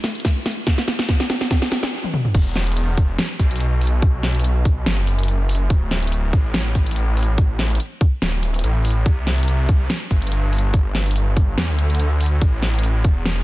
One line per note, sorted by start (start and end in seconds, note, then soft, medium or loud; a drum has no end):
0.04 snare medium
0.04 closed hi-hat medium
0.15 closed hi-hat soft
0.20 closed hi-hat medium
0.25 kick loud
0.25 snare medium
0.25 closed hi-hat medium
0.46 snare medium
0.46 closed hi-hat medium
0.51 closed hi-hat medium
0.67 kick loud
0.67 snare medium
0.67 closed hi-hat medium
0.78 snare medium
0.88 snare medium
0.88 closed hi-hat medium
0.99 snare medium
0.99 closed hi-hat soft
1.04 closed hi-hat medium
1.09 kick loud
1.09 snare medium
1.09 closed hi-hat medium
1.20 snare medium
1.30 snare medium
1.30 closed hi-hat medium
1.41 snare medium
1.51 kick loud
1.51 snare loud
1.51 closed hi-hat medium
1.62 snare medium
1.72 snare loud
1.72 closed hi-hat medium
1.83 snare medium
1.83 closed hi-hat soft
1.88 closed hi-hat medium
2.04 high tom medium
2.14 mid tom medium
2.25 mid tom medium
2.35 3.17 E1 loud
2.35 kick loud
2.35 closed hi-hat medium
2.35 crash loud
2.56 snare medium
2.56 closed hi-hat medium
2.67 closed hi-hat medium
2.72 closed hi-hat medium
2.77 closed hi-hat medium
2.98 kick loud
2.98 closed hi-hat medium
3.19 snare loud
3.19 closed hi-hat medium
3.39 4.85 B1 medium
3.39 kick medium
3.39 closed hi-hat medium
3.51 closed hi-hat medium
3.56 closed hi-hat medium
3.60 closed hi-hat medium
3.81 open hi-hat loud
3.87 closed hi-hat medium
4.02 kick loud
4.02 closed hi-hat medium
4.23 snare medium
4.23 closed hi-hat medium
4.35 closed hi-hat medium
4.39 closed hi-hat medium
4.44 closed hi-hat medium
4.65 kick loud
4.65 closed hi-hat medium
4.86 4.99 G1 medium
4.86 snare loud
4.86 closed hi-hat medium
4.98 5.69 F#1 loud
5.07 closed hi-hat medium
5.19 closed hi-hat medium
5.23 closed hi-hat medium
5.28 closed hi-hat medium
5.49 open hi-hat medium
5.55 closed hi-hat medium
5.70 6.32 D1 loud
5.70 kick loud
5.70 closed hi-hat medium
5.91 snare medium
5.91 closed hi-hat medium
6.03 closed hi-hat medium
6.07 closed hi-hat medium
6.12 closed hi-hat medium
6.33 7.79 A1 medium
6.33 kick loud
6.33 closed hi-hat medium
6.54 snare loud
6.54 closed hi-hat medium
6.75 kick medium
6.75 closed hi-hat medium
6.86 closed hi-hat soft
6.91 closed hi-hat medium
6.96 closed hi-hat medium
7.17 open hi-hat medium
7.23 closed hi-hat medium
7.38 kick loud
7.38 closed hi-hat medium
7.59 snare medium
7.59 closed hi-hat medium
7.70 closed hi-hat soft
7.75 closed hi-hat medium
7.80 closed hi-hat medium
8.01 kick loud
8.01 closed hi-hat medium
8.22 8.63 D1 medium
8.22 snare loud
8.22 closed hi-hat medium
8.43 closed hi-hat medium
8.54 closed hi-hat soft
8.59 closed hi-hat medium
8.64 9.05 A1 loud
8.64 closed hi-hat medium
8.85 open hi-hat medium
8.90 closed hi-hat medium
9.06 9.89 C2 loud
9.06 kick loud
9.06 closed hi-hat medium
9.27 snare medium
9.27 closed hi-hat medium
9.38 closed hi-hat soft
9.43 closed hi-hat medium
9.48 closed hi-hat medium
9.69 kick loud
9.69 closed hi-hat medium
9.90 snare loud
9.90 closed hi-hat medium
10.11 11.56 G1 medium
10.11 kick medium
10.11 closed hi-hat medium
10.22 closed hi-hat soft
10.27 closed hi-hat medium
10.32 closed hi-hat medium
10.53 open hi-hat medium
10.58 closed hi-hat medium
10.74 kick loud
10.74 closed hi-hat medium
10.95 snare medium
10.95 closed hi-hat medium
11.06 closed hi-hat soft
11.11 closed hi-hat medium
11.16 closed hi-hat medium
11.37 kick loud
11.37 closed hi-hat medium
11.58 11.70 E2 medium
11.58 snare loud
11.58 closed hi-hat medium
11.69 12.40 D2 loud
11.79 closed hi-hat medium
11.90 closed hi-hat soft
11.95 closed hi-hat medium
12.00 closed hi-hat medium
12.21 open hi-hat medium
12.26 closed hi-hat medium
12.41 13.03 A1 loud
12.41 kick loud
12.41 closed hi-hat medium
12.62 snare medium
12.62 closed hi-hat medium
12.74 closed hi-hat soft
12.79 closed hi-hat medium
12.83 closed hi-hat medium
13.05 13.44 E1 medium
13.05 kick loud
13.05 closed hi-hat medium
13.26 snare loud
13.26 closed hi-hat medium